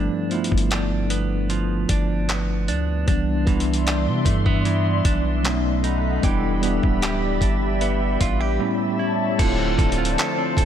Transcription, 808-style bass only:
0.52 1.85 G1 loud
1.89 2.70 G1 loud
2.68 3.06 D2 medium
3.08 3.45 C2 loud
3.47 4.08 C2 loud
4.06 4.25 C3 loud
4.25 5.01 G2 loud
5.05 6.19 B1 medium
6.23 6.80 E1 loud
6.83 7.40 D1 loud
7.41 8.17 G1 loud
8.21 8.58 A1 loud
9.39 9.77 D1 loud
9.78 10.16 D1 loud
10.57 10.65 D1 loud

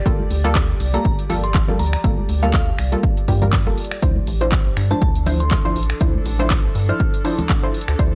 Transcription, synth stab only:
0.06 0.41 G3 medium
0.06 0.41 A#3 medium
0.06 0.41 F4 medium
0.06 0.41 A4 medium
0.44 0.91 G3 medium
0.44 0.91 A#3 loud
0.44 0.91 F4 medium
0.44 0.91 A4 loud
0.94 1.27 G3 medium
0.94 1.27 A#3 medium
0.94 1.27 F4 medium
0.94 1.27 A4 medium
1.30 1.46 G3 medium
1.30 1.46 A#3 medium
1.30 1.46 F4 medium
1.30 1.46 A4 loud
1.68 1.83 G3 medium
1.68 1.83 A#3 medium
1.68 1.83 F4 medium
1.68 1.83 A4 medium
2.04 2.39 G3 medium
2.04 2.39 A#3 medium
2.04 2.39 F4 medium
2.04 2.39 A4 medium
2.43 2.89 G3 loud
2.43 2.89 A#3 medium
2.43 2.89 F4 medium
2.43 2.89 A4 loud
2.92 3.25 G3 medium
2.92 3.25 A#3 medium
2.92 3.25 F4 medium
2.92 3.26 A4 medium
3.28 3.40 G3 medium
3.28 3.40 A#3 medium
3.28 3.40 F4 medium
3.28 3.40 G4 medium
3.42 3.56 G3 medium
3.42 3.56 A#3 medium
3.42 3.56 F4 medium
3.42 3.56 A#4 medium
3.66 4.00 G3 medium
3.66 4.00 A#3 medium
3.66 4.00 F4 medium
3.66 4.00 A4 medium
4.02 4.38 F3 medium
4.02 4.38 D4 medium
4.02 4.38 E4 medium
4.02 4.38 C5 medium
4.41 4.87 F3 loud
4.41 4.87 D4 medium
4.41 4.87 E4 medium
4.41 4.87 C5 loud
4.91 5.24 F3 medium
4.91 5.24 D4 medium
4.91 5.24 E4 medium
4.91 5.24 C5 medium
5.26 5.43 F3 loud
5.26 5.43 D4 medium
5.26 5.43 E4 medium
5.26 5.43 C5 loud
5.65 5.79 F3 medium
5.65 5.80 D4 medium
5.65 5.80 E4 medium
5.65 5.80 C5 medium
6.01 6.36 F3 medium
6.01 6.36 D4 medium
6.01 6.36 E4 medium
6.01 6.36 C5 medium
6.39 6.86 F3 loud
6.39 6.86 D4 medium
6.39 6.86 E4 medium
6.39 6.86 C5 loud
6.89 7.22 F3 medium
6.89 7.22 D4 medium
6.89 7.22 E4 medium
6.89 7.22 C5 medium
7.25 7.41 F3 medium
7.25 7.41 D4 medium
7.25 7.41 E4 medium
7.25 7.41 C5 loud
7.63 7.78 F3 medium
7.63 7.78 D4 medium
7.63 7.78 E4 medium
7.63 7.78 C5 loud
7.99 8.15 F3 medium
7.99 8.15 D4 medium
7.99 8.15 E4 medium
7.99 8.15 C5 medium

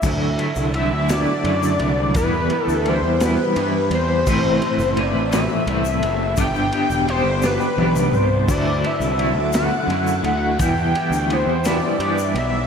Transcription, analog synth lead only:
0.00 0.40 E5 loud
0.75 1.13 E5 loud
1.11 2.15 D5 loud
2.16 2.65 B4 loud
2.65 2.90 A4 loud
2.89 3.24 C5 loud
3.23 3.92 B4 loud
3.94 5.01 C5 loud
5.00 5.34 D5 loud
5.34 6.35 E5 loud
6.40 7.05 G5 loud
7.09 7.47 C5 loud
7.45 8.17 B4 loud
8.16 8.50 C5 medium
8.51 8.88 D5 loud
8.86 9.55 E5 loud
9.56 10.22 F#5 loud
10.25 10.58 F#5 loud
10.61 11.34 G5 loud
11.32 11.67 C5 loud
11.66 12.39 D5 loud
12.38 12.67 E5 medium

